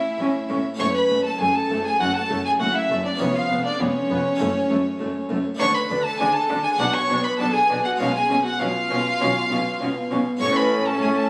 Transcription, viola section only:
0, 0, Header, 1, 2, 480
1, 0, Start_track
1, 0, Tempo, 601805
1, 632, Time_signature, 4, 2, 24, 8
1, 9009, End_track
2, 0, Start_track
2, 0, Title_t, "Viola section"
2, 0, Program_c, 0, 48
2, 156, Note_on_c, 0, 61, 75
2, 219, Note_off_c, 0, 61, 0
2, 393, Note_on_c, 0, 61, 68
2, 456, Note_off_c, 0, 61, 0
2, 635, Note_on_c, 0, 57, 72
2, 699, Note_off_c, 0, 57, 0
2, 879, Note_on_c, 0, 57, 59
2, 942, Note_off_c, 0, 57, 0
2, 1115, Note_on_c, 0, 57, 73
2, 1179, Note_off_c, 0, 57, 0
2, 1362, Note_on_c, 0, 57, 75
2, 1426, Note_off_c, 0, 57, 0
2, 1598, Note_on_c, 0, 57, 76
2, 1661, Note_off_c, 0, 57, 0
2, 1834, Note_on_c, 0, 57, 75
2, 1898, Note_off_c, 0, 57, 0
2, 2070, Note_on_c, 0, 57, 66
2, 2134, Note_off_c, 0, 57, 0
2, 2315, Note_on_c, 0, 57, 72
2, 2379, Note_off_c, 0, 57, 0
2, 2552, Note_on_c, 0, 59, 71
2, 2616, Note_off_c, 0, 59, 0
2, 2790, Note_on_c, 0, 59, 67
2, 2854, Note_off_c, 0, 59, 0
2, 3034, Note_on_c, 0, 59, 80
2, 3097, Note_off_c, 0, 59, 0
2, 3274, Note_on_c, 0, 59, 76
2, 3338, Note_off_c, 0, 59, 0
2, 3511, Note_on_c, 0, 57, 81
2, 3575, Note_off_c, 0, 57, 0
2, 3748, Note_on_c, 0, 57, 74
2, 3812, Note_off_c, 0, 57, 0
2, 3986, Note_on_c, 0, 57, 74
2, 4050, Note_off_c, 0, 57, 0
2, 4222, Note_on_c, 0, 57, 74
2, 4285, Note_off_c, 0, 57, 0
2, 4463, Note_on_c, 0, 62, 81
2, 4527, Note_off_c, 0, 62, 0
2, 4707, Note_on_c, 0, 62, 65
2, 4771, Note_off_c, 0, 62, 0
2, 4947, Note_on_c, 0, 62, 83
2, 5011, Note_off_c, 0, 62, 0
2, 5181, Note_on_c, 0, 62, 84
2, 5245, Note_off_c, 0, 62, 0
2, 5419, Note_on_c, 0, 62, 86
2, 5483, Note_off_c, 0, 62, 0
2, 5661, Note_on_c, 0, 62, 73
2, 5725, Note_off_c, 0, 62, 0
2, 5898, Note_on_c, 0, 62, 79
2, 5962, Note_off_c, 0, 62, 0
2, 6140, Note_on_c, 0, 62, 71
2, 6204, Note_off_c, 0, 62, 0
2, 6376, Note_on_c, 0, 61, 77
2, 6440, Note_off_c, 0, 61, 0
2, 6616, Note_on_c, 0, 61, 70
2, 6680, Note_off_c, 0, 61, 0
2, 6856, Note_on_c, 0, 61, 77
2, 6920, Note_off_c, 0, 61, 0
2, 7099, Note_on_c, 0, 61, 87
2, 7163, Note_off_c, 0, 61, 0
2, 7341, Note_on_c, 0, 61, 86
2, 7405, Note_off_c, 0, 61, 0
2, 7581, Note_on_c, 0, 61, 71
2, 7645, Note_off_c, 0, 61, 0
2, 7818, Note_on_c, 0, 61, 68
2, 7882, Note_off_c, 0, 61, 0
2, 8065, Note_on_c, 0, 61, 70
2, 8129, Note_off_c, 0, 61, 0
2, 8308, Note_on_c, 0, 61, 84
2, 9009, Note_off_c, 0, 61, 0
2, 9009, End_track
0, 0, End_of_file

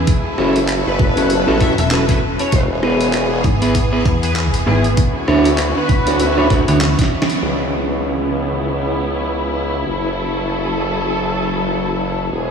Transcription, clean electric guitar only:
0, 0, Header, 1, 2, 480
1, 0, Start_track
1, 0, Tempo, 612245
1, 60, Time_signature, 4, 2, 24, 8
1, 9807, End_track
2, 0, Start_track
2, 0, Title_t, "Clean electric guitar"
2, 0, Program_c, 0, 27
2, 298, Note_on_c, 0, 61, 98
2, 299, Note_on_c, 0, 66, 89
2, 301, Note_on_c, 0, 69, 110
2, 302, Note_on_c, 0, 64, 86
2, 455, Note_off_c, 0, 66, 0
2, 455, Note_off_c, 0, 69, 0
2, 456, Note_off_c, 0, 61, 0
2, 456, Note_off_c, 0, 64, 0
2, 916, Note_on_c, 0, 61, 82
2, 919, Note_on_c, 0, 66, 75
2, 923, Note_on_c, 0, 69, 88
2, 926, Note_on_c, 0, 64, 73
2, 1043, Note_off_c, 0, 64, 0
2, 1043, Note_off_c, 0, 69, 0
2, 1044, Note_off_c, 0, 61, 0
2, 1044, Note_off_c, 0, 66, 0
2, 1153, Note_on_c, 0, 61, 99
2, 1156, Note_on_c, 0, 66, 87
2, 1159, Note_on_c, 0, 69, 111
2, 1161, Note_on_c, 0, 64, 91
2, 1243, Note_off_c, 0, 61, 0
2, 1243, Note_off_c, 0, 64, 0
2, 1243, Note_off_c, 0, 66, 0
2, 1243, Note_off_c, 0, 69, 0
2, 1256, Note_on_c, 0, 61, 95
2, 1257, Note_on_c, 0, 66, 86
2, 1259, Note_on_c, 0, 69, 108
2, 1260, Note_on_c, 0, 64, 88
2, 1360, Note_off_c, 0, 61, 0
2, 1360, Note_off_c, 0, 64, 0
2, 1360, Note_off_c, 0, 66, 0
2, 1360, Note_off_c, 0, 69, 0
2, 1495, Note_on_c, 0, 61, 86
2, 1499, Note_on_c, 0, 66, 79
2, 1502, Note_on_c, 0, 69, 98
2, 1505, Note_on_c, 0, 64, 79
2, 1604, Note_off_c, 0, 61, 0
2, 1604, Note_off_c, 0, 64, 0
2, 1605, Note_off_c, 0, 66, 0
2, 1605, Note_off_c, 0, 69, 0
2, 1636, Note_on_c, 0, 61, 91
2, 1636, Note_on_c, 0, 66, 80
2, 1637, Note_on_c, 0, 64, 80
2, 1637, Note_on_c, 0, 69, 100
2, 1711, Note_off_c, 0, 61, 0
2, 1711, Note_off_c, 0, 64, 0
2, 1711, Note_off_c, 0, 66, 0
2, 1711, Note_off_c, 0, 69, 0
2, 2216, Note_on_c, 0, 59, 77
2, 2220, Note_on_c, 0, 68, 75
2, 2222, Note_on_c, 0, 71, 92
2, 2224, Note_on_c, 0, 64, 72
2, 2804, Note_off_c, 0, 59, 0
2, 2805, Note_off_c, 0, 64, 0
2, 2805, Note_off_c, 0, 68, 0
2, 2805, Note_off_c, 0, 71, 0
2, 2837, Note_on_c, 0, 59, 100
2, 2838, Note_on_c, 0, 68, 96
2, 2838, Note_on_c, 0, 71, 113
2, 2840, Note_on_c, 0, 64, 94
2, 2963, Note_off_c, 0, 59, 0
2, 2963, Note_off_c, 0, 64, 0
2, 2963, Note_off_c, 0, 68, 0
2, 2963, Note_off_c, 0, 71, 0
2, 3077, Note_on_c, 0, 59, 91
2, 3077, Note_on_c, 0, 68, 85
2, 3078, Note_on_c, 0, 71, 103
2, 3079, Note_on_c, 0, 64, 85
2, 3152, Note_off_c, 0, 59, 0
2, 3152, Note_off_c, 0, 64, 0
2, 3152, Note_off_c, 0, 68, 0
2, 3152, Note_off_c, 0, 71, 0
2, 3654, Note_on_c, 0, 59, 91
2, 3658, Note_on_c, 0, 68, 80
2, 3662, Note_on_c, 0, 71, 96
2, 3666, Note_on_c, 0, 64, 83
2, 3814, Note_off_c, 0, 64, 0
2, 3814, Note_off_c, 0, 68, 0
2, 3814, Note_off_c, 0, 71, 0
2, 3815, Note_off_c, 0, 59, 0
2, 4137, Note_on_c, 0, 62, 96
2, 4139, Note_on_c, 0, 66, 89
2, 4139, Note_on_c, 0, 73, 109
2, 4140, Note_on_c, 0, 64, 89
2, 4295, Note_off_c, 0, 62, 0
2, 4295, Note_off_c, 0, 64, 0
2, 4295, Note_off_c, 0, 66, 0
2, 4295, Note_off_c, 0, 73, 0
2, 4756, Note_on_c, 0, 62, 84
2, 4758, Note_on_c, 0, 66, 73
2, 4759, Note_on_c, 0, 73, 89
2, 4760, Note_on_c, 0, 64, 77
2, 4883, Note_off_c, 0, 62, 0
2, 4883, Note_off_c, 0, 64, 0
2, 4883, Note_off_c, 0, 66, 0
2, 4883, Note_off_c, 0, 73, 0
2, 4995, Note_on_c, 0, 62, 97
2, 4997, Note_on_c, 0, 66, 88
2, 5000, Note_on_c, 0, 73, 106
2, 5003, Note_on_c, 0, 64, 89
2, 5078, Note_off_c, 0, 73, 0
2, 5079, Note_off_c, 0, 62, 0
2, 5079, Note_off_c, 0, 64, 0
2, 5079, Note_off_c, 0, 66, 0
2, 5095, Note_on_c, 0, 62, 90
2, 5099, Note_on_c, 0, 66, 82
2, 5102, Note_on_c, 0, 74, 97
2, 5105, Note_on_c, 0, 64, 84
2, 5200, Note_off_c, 0, 62, 0
2, 5200, Note_off_c, 0, 64, 0
2, 5200, Note_off_c, 0, 66, 0
2, 5200, Note_off_c, 0, 74, 0
2, 5235, Note_on_c, 0, 62, 94
2, 5238, Note_on_c, 0, 66, 88
2, 5240, Note_on_c, 0, 73, 104
2, 5243, Note_on_c, 0, 64, 83
2, 5312, Note_off_c, 0, 62, 0
2, 5312, Note_off_c, 0, 64, 0
2, 5312, Note_off_c, 0, 66, 0
2, 5312, Note_off_c, 0, 73, 0
2, 9807, End_track
0, 0, End_of_file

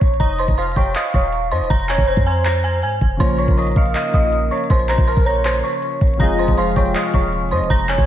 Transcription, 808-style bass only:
0, 0, Header, 1, 2, 480
1, 0, Start_track
1, 0, Key_signature, -5, "minor"
1, 0, Tempo, 375000
1, 257, Time_signature, 4, 2, 24, 8
1, 10319, End_track
2, 0, Start_track
2, 0, Title_t, "808-style bass"
2, 0, Program_c, 0, 38
2, 18, Note_on_c, 0, 34, 109
2, 248, Note_off_c, 0, 34, 0
2, 257, Note_on_c, 0, 29, 115
2, 602, Note_off_c, 0, 29, 0
2, 617, Note_on_c, 0, 29, 101
2, 962, Note_off_c, 0, 29, 0
2, 978, Note_on_c, 0, 29, 101
2, 1208, Note_off_c, 0, 29, 0
2, 1459, Note_on_c, 0, 27, 112
2, 1937, Note_on_c, 0, 41, 101
2, 1956, Note_off_c, 0, 27, 0
2, 2056, Note_on_c, 0, 27, 101
2, 2075, Note_off_c, 0, 41, 0
2, 2170, Note_off_c, 0, 27, 0
2, 2178, Note_on_c, 0, 29, 111
2, 2523, Note_off_c, 0, 29, 0
2, 2537, Note_on_c, 0, 29, 106
2, 2767, Note_off_c, 0, 29, 0
2, 2778, Note_on_c, 0, 41, 104
2, 3617, Note_on_c, 0, 44, 100
2, 3636, Note_off_c, 0, 41, 0
2, 3845, Note_off_c, 0, 44, 0
2, 3857, Note_on_c, 0, 29, 108
2, 4087, Note_off_c, 0, 29, 0
2, 4097, Note_on_c, 0, 34, 112
2, 4442, Note_off_c, 0, 34, 0
2, 4457, Note_on_c, 0, 34, 102
2, 4802, Note_off_c, 0, 34, 0
2, 4815, Note_on_c, 0, 34, 105
2, 5047, Note_off_c, 0, 34, 0
2, 5297, Note_on_c, 0, 34, 107
2, 5758, Note_off_c, 0, 34, 0
2, 6016, Note_on_c, 0, 34, 113
2, 6362, Note_off_c, 0, 34, 0
2, 6376, Note_on_c, 0, 34, 105
2, 6607, Note_off_c, 0, 34, 0
2, 6616, Note_on_c, 0, 34, 99
2, 7192, Note_off_c, 0, 34, 0
2, 7697, Note_on_c, 0, 34, 110
2, 7927, Note_off_c, 0, 34, 0
2, 7936, Note_on_c, 0, 29, 116
2, 8282, Note_off_c, 0, 29, 0
2, 8296, Note_on_c, 0, 29, 105
2, 8642, Note_off_c, 0, 29, 0
2, 8656, Note_on_c, 0, 29, 105
2, 8887, Note_off_c, 0, 29, 0
2, 9138, Note_on_c, 0, 27, 112
2, 9619, Note_on_c, 0, 41, 105
2, 9638, Note_off_c, 0, 27, 0
2, 9736, Note_on_c, 0, 27, 98
2, 9756, Note_off_c, 0, 41, 0
2, 9851, Note_off_c, 0, 27, 0
2, 9857, Note_on_c, 0, 29, 109
2, 10203, Note_off_c, 0, 29, 0
2, 10217, Note_on_c, 0, 29, 105
2, 10319, Note_off_c, 0, 29, 0
2, 10319, End_track
0, 0, End_of_file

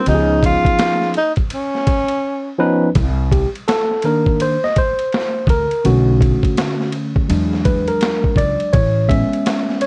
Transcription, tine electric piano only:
0, 0, Header, 1, 2, 480
1, 0, Start_track
1, 0, Tempo, 722892
1, 43, Time_signature, 4, 2, 24, 8
1, 6551, End_track
2, 0, Start_track
2, 0, Title_t, "Tine electric piano"
2, 0, Program_c, 0, 4
2, 43, Note_on_c, 0, 53, 67
2, 45, Note_on_c, 0, 59, 62
2, 48, Note_on_c, 0, 61, 64
2, 54, Note_on_c, 0, 63, 67
2, 56, Note_on_c, 0, 67, 66
2, 97, Note_on_c, 0, 68, 86
2, 103, Note_off_c, 0, 67, 0
2, 758, Note_off_c, 0, 53, 0
2, 759, Note_off_c, 0, 59, 0
2, 760, Note_off_c, 0, 61, 0
2, 764, Note_off_c, 0, 63, 0
2, 785, Note_off_c, 0, 68, 0
2, 1718, Note_on_c, 0, 53, 92
2, 1719, Note_on_c, 0, 59, 82
2, 1722, Note_on_c, 0, 61, 86
2, 1724, Note_on_c, 0, 63, 92
2, 1726, Note_on_c, 0, 71, 111
2, 1913, Note_off_c, 0, 53, 0
2, 1913, Note_off_c, 0, 59, 0
2, 1915, Note_off_c, 0, 61, 0
2, 1916, Note_off_c, 0, 63, 0
2, 1917, Note_off_c, 0, 71, 0
2, 2203, Note_on_c, 0, 67, 73
2, 2311, Note_off_c, 0, 67, 0
2, 2442, Note_on_c, 0, 69, 96
2, 2682, Note_on_c, 0, 51, 55
2, 2688, Note_on_c, 0, 58, 54
2, 2690, Note_off_c, 0, 69, 0
2, 2690, Note_on_c, 0, 62, 56
2, 2692, Note_on_c, 0, 70, 88
2, 2933, Note_on_c, 0, 72, 96
2, 2935, Note_off_c, 0, 70, 0
2, 3022, Note_off_c, 0, 51, 0
2, 3025, Note_off_c, 0, 58, 0
2, 3027, Note_off_c, 0, 62, 0
2, 3079, Note_off_c, 0, 72, 0
2, 3080, Note_on_c, 0, 75, 95
2, 3171, Note_off_c, 0, 75, 0
2, 3175, Note_on_c, 0, 72, 90
2, 3622, Note_off_c, 0, 72, 0
2, 3651, Note_on_c, 0, 70, 97
2, 3881, Note_on_c, 0, 50, 58
2, 3883, Note_on_c, 0, 57, 49
2, 3887, Note_on_c, 0, 61, 60
2, 3890, Note_on_c, 0, 66, 79
2, 3894, Note_off_c, 0, 70, 0
2, 4580, Note_off_c, 0, 66, 0
2, 4816, Note_off_c, 0, 50, 0
2, 4817, Note_off_c, 0, 57, 0
2, 4819, Note_off_c, 0, 61, 0
2, 4835, Note_on_c, 0, 54, 47
2, 4839, Note_on_c, 0, 56, 48
2, 4845, Note_on_c, 0, 62, 55
2, 5081, Note_on_c, 0, 71, 76
2, 5233, Note_on_c, 0, 70, 82
2, 5234, Note_off_c, 0, 71, 0
2, 5562, Note_on_c, 0, 74, 94
2, 5575, Note_off_c, 0, 70, 0
2, 5773, Note_off_c, 0, 54, 0
2, 5775, Note_off_c, 0, 56, 0
2, 5777, Note_off_c, 0, 62, 0
2, 5796, Note_on_c, 0, 73, 90
2, 5810, Note_off_c, 0, 74, 0
2, 6030, Note_on_c, 0, 56, 57
2, 6035, Note_on_c, 0, 76, 103
2, 6036, Note_on_c, 0, 59, 49
2, 6037, Note_on_c, 0, 61, 68
2, 6047, Note_off_c, 0, 73, 0
2, 6493, Note_off_c, 0, 76, 0
2, 6518, Note_on_c, 0, 73, 89
2, 6551, Note_off_c, 0, 56, 0
2, 6551, Note_off_c, 0, 59, 0
2, 6551, Note_off_c, 0, 61, 0
2, 6551, Note_off_c, 0, 73, 0
2, 6551, End_track
0, 0, End_of_file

